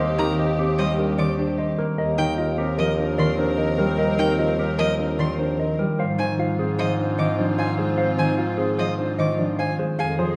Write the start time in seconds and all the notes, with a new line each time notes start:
Already playing: D#2 D#3 G3 A#3 C4 G4
0.00 G4 C5 D#5
0.18 D#3 D#4 G4 A#4 A#5
0.38 G4 D#5
0.58 C4 G4
0.78 G3 G4 C5 D#5
0.98 D4 G4 A#4
1.18 D#3 G4 C5 D5 D6
1.38 D4 G4 C5
1.58 G4 C5 D#5
1.78 A#3 A#4
1.97 D#2 C4 A#4 D#5
2.18 D#3 D#4 A#4 G5
2.37 F4 A#4 D#5
2.58 C4 G4 A#4
2.77 F3 A#4 D#5
2.98 D4 A#4
3.18 D#3 A#4 D5 C6
3.38 D4 A#4 C5
3.58 A#4 D#5
3.78 G3 G4 A#4
3.98 A#4 D#5
4.18 D#3 D#4 A#4 G5
4.38 F4 A#4 D#5
4.58 C4 G4 A#4
4.79 F3 A#4 D#5
4.99 D4 A#4
5.19 D#3 A#4 D5 C6
5.39 D4 A#4 C5
5.58 A#4 D#5
5.79 G3 G4 A#4
5.98 G#2 C4 F4 C5 F5
6.18 D#3 D#4 C5 G#5
6.38 F4 C5 F5
6.59 C4 G#4 C5
6.78 F3 C5 D#5 F5
6.99 D4 C5
7.18 D#3 C5 D#5 D6
7.38 F3 D4 C5 D5
7.58 C5 F5 G#5
7.78 G#3 G#4 C5
7.98 C5 F5
8.18 D#3 D#4 C5 G#5
8.38 F4 C5 F5
8.58 C4 G#4 C5
8.78 F3 C5 D#5 F5
8.98 D4 C5
9.18 D#3 C5 D#5 D6
9.38 F3 D4 C5 D5
9.59 C5 F5 G#5
9.79 G#3 G#4 C5
9.99 F2 D#4 G#4 F5 G#5
10.19 F3 G#4 C5